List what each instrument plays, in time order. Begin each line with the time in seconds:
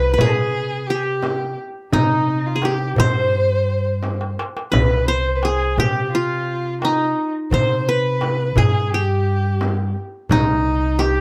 Already playing: upright bass C2, qanun G4 B4, violin B4
0.14 violin G#4, qanun B4
0.18 upright bass C3, qanun G#4, darbuka dum, frame drum
0.87 violin G4, qanun G4
0.95 violin G#4
1.03 violin G4, darbuka ka
1.23 darbuka tek, frame drum
1.92 upright bass C3, violin D#4, qanun D#4, frame drum, darbuka dum
2.45 violin F4, darbuka ka
2.56 qanun G#4
2.62 violin G4, qanun G4, darbuka tek, frame drum
2.96 upright bass G2, violin C5, qanun C5, darbuka dum, frame drum
3.15 darbuka ka
3.50 darbuka ka
3.68 darbuka ka
3.85 darbuka ka
4.03 darbuka tek, frame drum
4.21 darbuka ka
4.39 darbuka tek
4.57 darbuka ka
4.72 upright bass C2, qanun B4, violin B4, frame drum, darbuka dum
5.06 violin C5, qanun C5
5.26 darbuka ka
5.35 violin B4
5.42 violin G#4, qanun G#4, darbuka tek, frame drum
5.77 upright bass C3, violin G4, qanun G4, darbuka dum, frame drum
6.11 violin F4, qanun F4
6.65 darbuka ka
6.81 violin D#4, qanun D#4, darbuka tek, frame drum
7.51 upright bass C3, violin C5, qanun C5, darbuka dum, frame drum
7.86 violin B4, qanun B4, darbuka ka
8.04 darbuka ka
8.21 darbuka tek, frame drum
8.56 upright bass G2, violin G#4, qanun G#4, darbuka dum, frame drum
8.92 violin G4, qanun G4
9.44 darbuka ka
9.61 darbuka tek, frame drum
10.29 upright bass C2, qanun D#4, violin D#4, darbuka dum, frame drum
10.65 darbuka ka
10.82 darbuka ka
10.99 qanun G4, violin G4, darbuka tek, frame drum